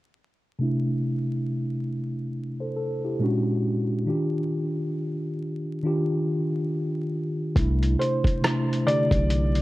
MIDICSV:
0, 0, Header, 1, 5, 480
1, 0, Start_track
1, 0, Key_signature, 0, "major"
1, 0, Tempo, 869565
1, 332, Time_signature, 4, 2, 24, 8
1, 5310, End_track
2, 0, Start_track
2, 0, Title_t, "Felt piano"
2, 0, Program_c, 0, 0
2, 4412, Note_on_c, 0, 72, 77
2, 4894, Note_on_c, 0, 74, 108
2, 4906, Note_off_c, 0, 72, 0
2, 5310, Note_off_c, 0, 74, 0
2, 5310, End_track
3, 0, Start_track
3, 0, Title_t, "Tine electric piano"
3, 0, Program_c, 1, 4
3, 324, Note_on_c, 1, 48, 79
3, 332, Note_on_c, 1, 57, 61
3, 338, Note_on_c, 1, 62, 63
3, 348, Note_on_c, 1, 64, 70
3, 439, Control_c, 1, 64, 127
3, 997, Note_off_c, 1, 48, 0
3, 1001, Note_off_c, 1, 57, 0
3, 1004, Note_off_c, 1, 62, 0
3, 1009, Note_off_c, 1, 64, 0
3, 1437, Note_on_c, 1, 72, 53
3, 1441, Note_on_c, 1, 69, 46
3, 1519, Note_off_c, 1, 69, 0
3, 1525, Note_on_c, 1, 69, 64
3, 1527, Note_off_c, 1, 72, 0
3, 1665, Note_off_c, 1, 69, 0
3, 1682, Note_on_c, 1, 67, 60
3, 1684, Note_on_c, 1, 64, 52
3, 1762, Note_on_c, 1, 46, 74
3, 1766, Note_on_c, 1, 56, 75
3, 1772, Note_on_c, 1, 61, 73
3, 1778, Control_c, 1, 64, 0
3, 1779, Note_on_c, 1, 62, 76
3, 1784, Note_on_c, 1, 66, 89
3, 1876, Control_c, 1, 64, 127
3, 1907, Note_off_c, 1, 67, 0
3, 1908, Note_off_c, 1, 64, 0
3, 2170, Note_off_c, 1, 46, 0
3, 2172, Note_off_c, 1, 56, 0
3, 2175, Note_off_c, 1, 61, 0
3, 2179, Note_off_c, 1, 62, 0
3, 2181, Note_off_c, 1, 66, 0
3, 2240, Note_on_c, 1, 51, 67
3, 2245, Note_on_c, 1, 62, 68
3, 2253, Note_on_c, 1, 65, 57
3, 2258, Control_c, 1, 64, 0
3, 2259, Note_on_c, 1, 67, 75
3, 2341, Control_c, 1, 64, 127
3, 2915, Note_off_c, 1, 51, 0
3, 2917, Note_off_c, 1, 62, 0
3, 2921, Note_off_c, 1, 65, 0
3, 2924, Note_off_c, 1, 67, 0
3, 3217, Note_on_c, 1, 51, 73
3, 3221, Note_on_c, 1, 62, 68
3, 3231, Note_on_c, 1, 65, 71
3, 3238, Note_on_c, 1, 67, 88
3, 3883, Note_off_c, 1, 51, 0
3, 3885, Note_off_c, 1, 62, 0
3, 3890, Note_off_c, 1, 65, 0
3, 3894, Note_off_c, 1, 67, 0
3, 4168, Note_on_c, 1, 48, 73
3, 4173, Note_on_c, 1, 57, 70
3, 4179, Control_c, 1, 64, 0
3, 4181, Note_on_c, 1, 62, 64
3, 4189, Note_on_c, 1, 64, 88
3, 4288, Control_c, 1, 64, 127
3, 4516, Note_off_c, 1, 48, 0
3, 4518, Note_off_c, 1, 57, 0
3, 4522, Note_off_c, 1, 62, 0
3, 4526, Note_off_c, 1, 64, 0
3, 4644, Note_on_c, 1, 48, 68
3, 4650, Note_on_c, 1, 57, 65
3, 4661, Note_on_c, 1, 62, 68
3, 4666, Note_on_c, 1, 64, 79
3, 4827, Note_off_c, 1, 48, 0
3, 4830, Note_off_c, 1, 57, 0
3, 4836, Note_off_c, 1, 62, 0
3, 4838, Note_off_c, 1, 64, 0
3, 4887, Note_on_c, 1, 50, 63
3, 4897, Note_on_c, 1, 57, 62
3, 4903, Note_on_c, 1, 62, 65
3, 4911, Note_on_c, 1, 67, 70
3, 5310, Note_off_c, 1, 50, 0
3, 5310, Note_off_c, 1, 57, 0
3, 5310, Note_off_c, 1, 62, 0
3, 5310, Note_off_c, 1, 67, 0
3, 5310, End_track
4, 0, Start_track
4, 0, Title_t, "Sub bass"
4, 0, Program_c, 2, 38
4, 4174, Note_on_c, 2, 36, 99
4, 4396, Note_off_c, 2, 36, 0
4, 5031, Note_on_c, 2, 35, 88
4, 5310, Note_off_c, 2, 35, 0
4, 5310, End_track
5, 0, Start_track
5, 0, Title_t, "Drums"
5, 4172, Note_on_c, 9, 36, 96
5, 4177, Note_on_c, 9, 42, 67
5, 4227, Note_off_c, 9, 36, 0
5, 4232, Note_off_c, 9, 42, 0
5, 4320, Note_on_c, 9, 42, 45
5, 4375, Note_off_c, 9, 42, 0
5, 4424, Note_on_c, 9, 42, 58
5, 4480, Note_off_c, 9, 42, 0
5, 4551, Note_on_c, 9, 36, 84
5, 4565, Note_on_c, 9, 42, 49
5, 4606, Note_off_c, 9, 36, 0
5, 4620, Note_off_c, 9, 42, 0
5, 4659, Note_on_c, 9, 42, 85
5, 4661, Note_on_c, 9, 37, 105
5, 4714, Note_off_c, 9, 42, 0
5, 4716, Note_off_c, 9, 37, 0
5, 4818, Note_on_c, 9, 42, 41
5, 4873, Note_off_c, 9, 42, 0
5, 4903, Note_on_c, 9, 42, 72
5, 4958, Note_off_c, 9, 42, 0
5, 5029, Note_on_c, 9, 36, 83
5, 5035, Note_on_c, 9, 42, 55
5, 5084, Note_off_c, 9, 36, 0
5, 5090, Note_off_c, 9, 42, 0
5, 5134, Note_on_c, 9, 42, 79
5, 5190, Note_off_c, 9, 42, 0
5, 5273, Note_on_c, 9, 42, 54
5, 5310, Note_off_c, 9, 42, 0
5, 5310, End_track
0, 0, End_of_file